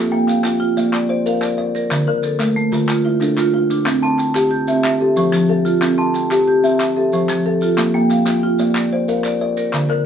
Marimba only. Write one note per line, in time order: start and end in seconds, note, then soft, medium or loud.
0.00 0.12 F4 medium
0.00 0.28 A4 medium
0.12 0.45 A#3 medium
0.27 0.77 F5 medium
0.60 0.93 F4 medium
0.94 1.09 D5 medium
1.10 1.41 D5 medium
1.27 1.75 F5 medium
1.42 1.58 D5 medium
1.59 1.74 D5 medium
1.75 2.07 A#4 medium
1.75 2.24 D5 medium
2.08 2.40 D3 medium
2.24 2.72 A4 medium
2.56 2.89 A3 medium
2.88 3.03 F4 medium
3.05 3.37 F4 medium
3.21 3.70 A4 medium
3.38 3.53 F4 medium
3.54 3.69 F4 medium
3.70 4.03 D4 medium
3.70 4.19 F4 medium
4.03 4.36 C4 medium
4.18 4.68 G5 medium
4.51 4.84 G4 medium
4.84 5.00 E5 medium
5.00 5.48 A4 medium
5.16 5.66 C5 medium
5.32 5.65 F3 medium
5.49 5.64 A4 medium
5.65 5.98 F4 medium
5.65 6.14 A4 medium
5.98 6.31 C4 medium
6.15 6.64 G5 medium
6.48 6.80 G4 medium
6.80 6.96 E5 medium
6.97 7.45 A4 medium
7.13 7.62 C5 medium
7.30 7.62 F3 medium
7.46 7.61 A4 medium
7.62 7.94 F4 medium
7.62 8.11 A4 medium
7.94 8.27 A#3 medium
8.10 8.59 F5 medium
8.43 8.76 F4 medium
8.76 8.91 D5 medium
8.93 9.24 D5 medium
9.09 9.57 F5 medium
9.25 9.40 D5 medium
9.41 9.56 D5 medium
9.57 9.90 A#4 medium
9.57 10.06 D5 medium
9.90 10.06 D3 medium